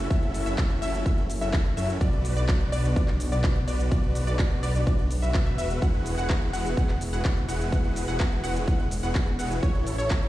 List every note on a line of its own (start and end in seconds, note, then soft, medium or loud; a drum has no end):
0.00 1.97 A3 medium
0.00 1.97 E4 medium
0.00 9.59 F#4 loud
0.00 impact medium
0.10 0.44 F#1 loud
0.10 0.43 C#4 medium
0.10 0.43 E4 medium
0.10 0.43 F#4 medium
0.10 0.43 A4 medium
0.10 0.43 E5 loud
0.10 kick loud
0.10 closed hi-hat medium
0.10 shaker soft
0.22 closed hi-hat soft
0.34 open hi-hat loud
0.34 ride medium
0.34 shaker medium
0.46 0.80 F#1 loud
0.46 0.79 C#4 loud
0.46 0.79 E4 medium
0.46 0.79 F#4 medium
0.46 0.79 A4 medium
0.46 0.79 E5 loud
0.46 shaker soft
0.58 kick loud
0.58 clap loud
0.58 closed hi-hat medium
0.58 shaker soft
0.70 closed hi-hat soft
0.82 1.03 F#1 loud
0.82 1.03 C#4 loud
0.82 1.03 E4 medium
0.82 1.03 F#4 medium
0.82 1.03 A4 medium
0.82 1.03 E5 loud
0.82 open hi-hat medium
0.82 ride medium
0.82 shaker medium
0.94 closed hi-hat medium
0.94 shaker soft
1.06 1.39 F#1 loud
1.06 1.22 C#4 medium
1.06 1.22 E4 medium
1.06 1.22 F#4 medium
1.06 1.22 A4 medium
1.06 1.22 E5 loud
1.06 1.22 E5 medium
1.06 kick loud
1.06 closed hi-hat medium
1.06 shaker soft
1.18 closed hi-hat soft
1.30 open hi-hat loud
1.30 ride medium
1.30 shaker medium
1.41 1.75 F#1 medium
1.41 1.68 C#4 medium
1.41 1.68 E4 medium
1.41 1.68 F#4 medium
1.41 1.68 A4 medium
1.41 1.68 E5 loud
1.41 shaker soft
1.53 kick loud
1.53 clap loud
1.53 closed hi-hat medium
1.53 shaker soft
1.65 closed hi-hat soft
1.77 1.99 F#2 loud
1.77 1.98 C#4 medium
1.77 1.98 E4 medium
1.77 1.98 F#4 medium
1.77 1.98 A4 medium
1.77 1.98 E5 medium
1.77 open hi-hat medium
1.77 ride medium
1.77 shaker medium
1.89 closed hi-hat medium
1.89 shaker soft
2.01 2.34 B1 loud
2.01 5.78 B3 medium
2.01 5.78 D4 medium
2.01 2.34 F#4 loud
2.01 2.34 B4 medium
2.01 2.34 D5 loud
2.01 kick loud
2.01 closed hi-hat medium
2.01 shaker soft
2.13 closed hi-hat soft
2.25 open hi-hat loud
2.25 ride medium
2.25 shaker medium
2.37 2.70 B1 loud
2.37 2.70 F#4 loud
2.37 2.70 B4 medium
2.37 2.70 D5 loud
2.37 shaker soft
2.49 kick loud
2.49 clap loud
2.49 closed hi-hat medium
2.49 shaker soft
2.61 closed hi-hat soft
2.72 2.94 B1 loud
2.72 2.93 F#4 medium
2.72 2.93 B4 medium
2.72 2.93 D5 loud
2.72 open hi-hat medium
2.72 ride medium
2.72 shaker medium
2.84 closed hi-hat medium
2.84 shaker soft
2.96 3.30 B1 loud
2.96 3.12 F#4 medium
2.96 3.12 B4 medium
2.96 3.12 D5 loud
2.96 3.13 D5 loud
2.96 kick loud
2.96 closed hi-hat soft
2.96 shaker soft
3.08 clap soft
3.08 closed hi-hat soft
3.20 open hi-hat loud
3.20 ride medium
3.20 shaker medium
3.32 3.65 B1 loud
3.32 3.58 F#4 medium
3.32 3.58 B4 medium
3.32 3.58 D5 medium
3.32 3.58 D5 loud
3.32 closed hi-hat medium
3.32 shaker soft
3.44 kick loud
3.44 clap loud
3.44 closed hi-hat medium
3.44 shaker soft
3.56 closed hi-hat soft
3.68 3.89 B1 medium
3.68 3.89 F#4 medium
3.68 3.89 B4 medium
3.68 3.89 D5 medium
3.68 open hi-hat loud
3.68 ride medium
3.68 shaker medium
3.80 closed hi-hat medium
3.80 shaker soft
3.91 4.25 B1 loud
3.91 4.24 F#4 medium
3.91 4.24 B4 medium
3.91 4.24 D5 loud
3.91 kick loud
3.91 closed hi-hat medium
3.91 shaker soft
4.03 closed hi-hat soft
4.15 open hi-hat loud
4.15 ride medium
4.15 shaker medium
4.27 4.61 B1 loud
4.27 4.60 F#4 medium
4.27 4.60 B4 medium
4.27 4.60 D5 loud
4.27 closed hi-hat medium
4.27 shaker soft
4.39 kick loud
4.39 clap loud
4.39 closed hi-hat medium
4.39 shaker soft
4.51 closed hi-hat soft
4.63 4.84 B1 loud
4.63 4.84 F#4 medium
4.63 4.84 B4 medium
4.63 4.84 D5 loud
4.63 open hi-hat medium
4.63 ride medium
4.63 shaker medium
4.75 closed hi-hat soft
4.75 shaker soft
4.87 5.20 B1 loud
4.87 5.03 F#4 medium
4.87 5.03 B4 medium
4.87 5.03 D5 loud
4.87 kick loud
4.87 closed hi-hat medium
4.87 shaker soft
4.99 closed hi-hat soft
5.11 open hi-hat loud
5.11 ride medium
5.11 shaker medium
5.22 5.44 B1 medium
5.22 5.43 F#4 medium
5.22 5.43 B4 medium
5.22 5.43 E5 loud
5.22 shaker soft
5.34 kick loud
5.34 clap loud
5.34 closed hi-hat medium
5.34 shaker soft
5.46 5.56 B1 medium
5.46 5.55 F#4 medium
5.46 5.55 B4 medium
5.46 5.55 E5 loud
5.46 closed hi-hat soft
5.58 5.80 E1 loud
5.58 5.79 F#4 loud
5.58 5.79 B4 medium
5.58 5.79 E5 loud
5.58 open hi-hat medium
5.58 ride medium
5.58 shaker medium
5.70 closed hi-hat medium
5.70 shaker soft
5.82 6.15 E1 loud
5.82 9.59 G#3 medium
5.82 6.15 E4 loud
5.82 10.29 E4 medium
5.82 6.15 F#4 medium
5.82 6.15 G#4 medium
5.82 6.15 B4 medium
5.82 6.15 F#5 loud
5.82 kick loud
5.82 closed hi-hat soft
5.82 shaker soft
5.94 closed hi-hat soft
6.06 open hi-hat loud
6.06 ride medium
6.06 shaker medium
6.17 6.51 E1 loud
6.17 6.50 E4 loud
6.17 6.50 F#4 medium
6.17 6.50 G#4 medium
6.17 6.50 B4 medium
6.17 6.50 F#5 loud
6.17 6.51 F#5 loud
6.17 closed hi-hat medium
6.17 shaker soft
6.30 kick loud
6.30 clap loud
6.30 closed hi-hat medium
6.30 shaker soft
6.42 closed hi-hat soft
6.53 6.75 E1 loud
6.53 6.74 E4 loud
6.53 6.74 F#4 medium
6.53 6.74 G#4 medium
6.53 6.74 B4 medium
6.53 6.74 F#5 loud
6.53 open hi-hat loud
6.53 ride medium
6.53 shaker medium
6.65 closed hi-hat soft
6.65 shaker soft
6.77 7.11 E1 loud
6.77 6.93 E4 medium
6.77 6.93 F#4 medium
6.77 6.93 G#4 medium
6.77 6.93 B4 medium
6.77 6.93 F#5 medium
6.77 6.94 F#5 loud
6.77 kick loud
6.77 closed hi-hat medium
6.77 shaker soft
6.89 clap soft
6.89 closed hi-hat soft
7.01 open hi-hat loud
7.01 ride medium
7.01 shaker medium
7.13 7.46 E1 loud
7.13 7.39 E4 medium
7.13 7.39 F#4 medium
7.13 7.39 G#4 medium
7.13 7.39 B4 medium
7.13 7.39 F#5 loud
7.13 closed hi-hat medium
7.13 shaker soft
7.25 kick loud
7.25 clap loud
7.25 closed hi-hat soft
7.25 shaker soft
7.37 closed hi-hat soft
7.48 7.70 E1 loud
7.48 7.70 E4 medium
7.48 7.70 F#4 medium
7.48 7.70 G#4 medium
7.48 7.70 B4 medium
7.48 7.70 F#5 medium
7.48 open hi-hat medium
7.48 ride medium
7.48 shaker medium
7.60 closed hi-hat soft
7.60 shaker soft
7.72 8.06 E1 loud
7.72 8.05 E4 medium
7.72 8.05 F#4 medium
7.72 8.05 G#4 medium
7.72 8.05 B4 medium
7.72 8.05 F#5 loud
7.72 kick loud
7.72 closed hi-hat medium
7.72 shaker soft
7.84 closed hi-hat soft
7.96 open hi-hat loud
7.96 ride medium
7.96 shaker medium
8.08 8.41 E1 loud
8.08 8.41 E4 loud
8.08 8.41 F#4 medium
8.08 8.41 G#4 medium
8.08 8.41 B4 medium
8.08 8.41 F#5 loud
8.08 shaker soft
8.20 kick loud
8.20 clap loud
8.20 closed hi-hat medium
8.20 shaker soft
8.32 closed hi-hat soft
8.44 8.65 E1 loud
8.44 8.65 E4 loud
8.44 8.65 F#4 medium
8.44 8.65 G#4 medium
8.44 8.65 B4 medium
8.44 8.65 F#5 loud
8.44 open hi-hat medium
8.44 ride medium
8.44 shaker medium
8.56 closed hi-hat medium
8.56 shaker soft
8.67 9.01 E1 loud
8.67 8.84 E4 medium
8.67 8.84 F#4 medium
8.67 8.84 G#4 medium
8.67 8.84 B4 medium
8.67 8.84 F#5 loud
8.67 kick loud
8.67 closed hi-hat medium
8.67 shaker soft
8.79 closed hi-hat soft
8.91 open hi-hat loud
8.91 ride medium
8.91 shaker medium
9.03 9.37 E1 loud
9.03 9.29 E4 medium
9.03 9.29 F#4 medium
9.03 9.29 G#4 medium
9.03 9.29 B4 medium
9.03 9.29 F#5 loud
9.03 shaker soft
9.15 kick loud
9.15 clap loud
9.15 closed hi-hat medium
9.15 shaker soft
9.27 closed hi-hat soft
9.39 9.61 E1 loud
9.39 9.60 E4 medium
9.39 9.60 F#4 medium
9.39 9.60 G#4 medium
9.39 9.60 B4 medium
9.39 9.60 F#5 medium
9.39 open hi-hat medium
9.39 ride medium
9.39 shaker medium
9.51 closed hi-hat medium
9.51 shaker soft
9.63 9.96 A1 loud
9.63 10.29 A3 medium
9.63 10.29 C#4 medium
9.63 9.96 E4 loud
9.63 9.96 A4 medium
9.63 9.96 C#5 loud
9.63 kick loud
9.63 closed hi-hat medium
9.63 shaker soft
9.75 closed hi-hat soft
9.87 open hi-hat loud
9.87 ride medium
9.87 shaker medium
9.98 10.29 A1 loud
9.98 10.29 E4 loud
9.98 10.29 A4 medium
9.98 10.29 C#5 loud
9.98 shaker medium
10.10 kick loud
10.10 clap loud
10.10 closed hi-hat medium
10.10 shaker soft
10.22 closed hi-hat soft